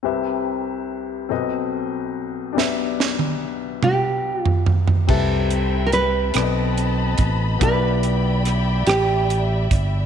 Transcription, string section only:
\new Staff \with { instrumentName = "String section" } { \time 6/8 \key c \major \tempo 4. = 48 << { r2. | r2. | b''2.~ | b''2. | } \\ { r2. | r2. | <c' e'' g''>4. <c' dis'' a''>4. | <d'' e'' g''>2. | } >> }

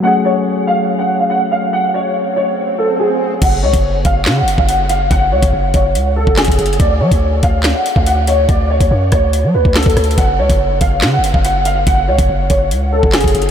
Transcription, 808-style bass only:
\new Staff \with { instrumentName = "808-style bass" } { \clef bass \time 4/4 \key fis \minor \tempo 4 = 142 r1 | r1 | fis,,8 cis,16 fis,,8. fis,,8 cis16. fis,,16. fis,,4~ fis,,16 | fis,,8 cis,16 fis,,16 fis,,8 fis,,8 cis,8. fis,,8 fis,,16 fis,,8 |
d,8 fis16 d,8. d,8. r8 d,4~ d,16 | d,8. d,16 fis,8 d,8. fis16 d,16 d,8 d,16 d,8 | fis,,8 cis,16 fis,,8. fis,,8 cis16. fis,,16. fis,,4~ fis,,16 | fis,,8 cis,16 fis,,16 fis,,8 fis,,8 cis,8. fis,,8 fis,,16 fis,,8 | }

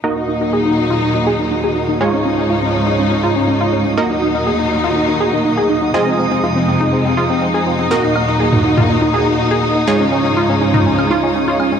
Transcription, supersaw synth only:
\new Staff \with { instrumentName = "Supersaw synth" } { \time 4/4 \key ees \dorian \tempo 4 = 122 <bes ees' ges' ees''>1 | <aes ees' f' des''>1 | <bes ees' ges' ees''>1 | <c' f' aes' ees''>1 |
<bes ees' ges' ees''>1 | <aes ees' f' des''>1 | }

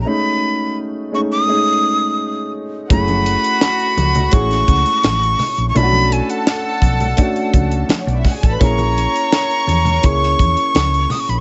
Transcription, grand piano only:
\new Staff \with { instrumentName = "Grand piano" } { \time 4/4 \key b \mixolydian \tempo 4 = 84 <gis a cis' dis'>4 r8 <gis a cis' dis'>8 <gis a cis' dis'>4. r8 | <a cis' e' gis'>4. r8 <gis a cis' e' gis'>4. r8 | <a cis' d' e' fis'>4. r8 <a cis' d' fis'>4. r8 | <ais cis' e' gis'>4. r8 <ais cis' e' gis'>4. r8 | }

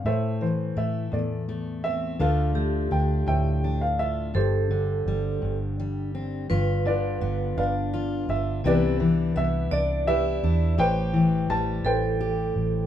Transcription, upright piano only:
\new Staff \with { instrumentName = "Upright piano" } { \time 6/8 \key g \mixolydian \tempo 4. = 56 << { e''8 c''8 e''8 d''4 e''8 | f''4 g''8 g''8. f''16 e''8 | c''2 r4 | r8 d''4 f''4 e''8 |
d''4 e''8 d''8 e''4 | g''4 a''8 g''4. | } \\ { <a' c''>4. a'4. | a'4. e''4. | g'2 r4 | r8 <f' b'>4 <b' d''>4. |
<g' b'>4. r8 <g' b'>4 | <b' c''>4. <b' c''>4. | } >> }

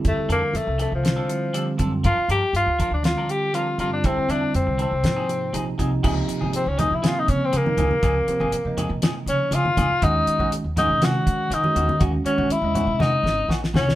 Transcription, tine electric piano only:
\new Staff \with { instrumentName = "Tine electric piano" } { \time 4/4 \key f \major \tempo 4 = 120 <d g c' e'>4 r4 <d g c' f'>8 <d g c' e'>8 <d g c' g'>8 <d g c' f'>8 | r2 <d g c' f'>8 <d g c' f'>8 <d g c' f'>8 <d g c' f'>8 | <d g c' e'>4. r8 <c f bes ees'>8 <c f bes ees'>8 <c f bes ees'>8 <c f bes ees'>8 | \key des \major <c f bes ees'>4~ <c f bes ees'>16 r16 <c f bes ees'>8 <c f bes c'>4 r16 <c f bes ees'>8 r16 |
<c f bes c'>8 <c f bes c'>8 r16 <c f bes ees'>4. r4 r16 | <ees aes des' ges'>4~ <ees aes des' ges'>16 r16 <ees aes des' aes'>8 <ees aes des' ges'>4 r16 <ees aes des' ges'>8 r16 | <ees aes des' ges'>8 <ees aes des' ges'>8 r16 <des aes des' ees''>4. r4 r16 | }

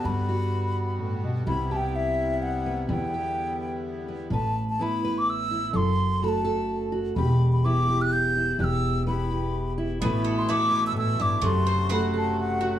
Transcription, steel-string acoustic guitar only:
\new Staff \with { instrumentName = "Steel-string acoustic guitar" } { \time 3/4 \key e \minor \tempo 4 = 127 << { fis'8 fis'2~ fis'8 | r8 g'2 b8 | r8 g'2 b8 | b'4 <b e' b'>8 b'4 e'8 |
a'4 <a fis' a'>8 a'4 fis'8 | g'4 <b e' g'>8 g'4 e'8 | g'4 <b e' g'>8 g'4 e'8 | <e b e' b'>4 <b e' b'>8 b'4. |
a'4 <a fis' a'>8 a'4 fis'8 | } \\ { g,2 a,8 b,8 | c2. | e,2. | a,2. |
fis,2. | e,2. | e,2. | a,2 a,8 g,8 |
fis,2. | } >> }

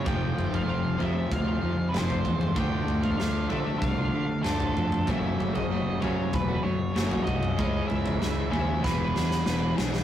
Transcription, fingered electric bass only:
\new Staff \with { instrumentName = "Fingered electric bass" } { \clef bass \time 4/4 \key f \lydian \tempo 4 = 96 f,,8 f,,8 f,,8 f,8 d,8 f,8 f,,8 e,8 | d,8 d,8 d,8 d8 c,8 d8 d,8 f,8 | fis,,8 fis,,8 fis,,8 fis,8 e,,8 fis,8 fis,,8 c,8 | cis,8 cis,8 cis,8 dis,8 e,,8 e,8 e,,8 b,,8 | }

